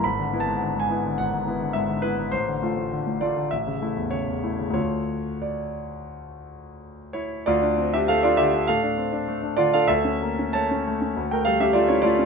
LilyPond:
<<
  \new Staff \with { instrumentName = "Grand piano" } { \time 4/4 \key a \phrygian \tempo 4 = 100 \tuplet 3/2 { b''4 a''8~ a''8 gis''4 } fis''4 e''8 b'8 | c''4. d''8 e''4 cis''4 | cis''4 d''2~ d''8 <e' cis''>8 | <f' d''>8. <g' e''>16 <a' f''>16 <f' d''>16 <g' e''>8 <a' f''>4. <f' d''>16 <a' f''>16 |
<a' e''>4 <cis'' a''>4~ <cis'' a''>16 <bes' g''>16 <a' f''>16 <g' e''>16 <f' d''>16 <e' cis''>16 <f' d''>8 | }
  \new Staff \with { instrumentName = "Grand piano" } { \time 4/4 \key a \phrygian gis,,16 d16 <b e'>16 gis,16 d16 gis,16 <b e'>16 d16 gis,,16 gis,16 <b e'>16 d16 gis,16 d16 <b e'>16 gis,16 | a,,16 d16 <a f'>16 a,16 d16 a,16 <a f'>16 d16 a,,16 cis16 <a e'>16 e,16 cis16 e,16 <a e'>16 cis16 | <d, d a f'>1 | d,16 d'16 c'16 d'16 a16 d'16 d16 d'16 a,16 d'16 c'16 d'16 a16 d'16 d16 d'16 |
d,16 cis'16 bes16 cis'16 a16 cis'16 a16 cis'16 d,16 a16 g16 cis'16 a16 cis'16 a16 cis'16 | }
>>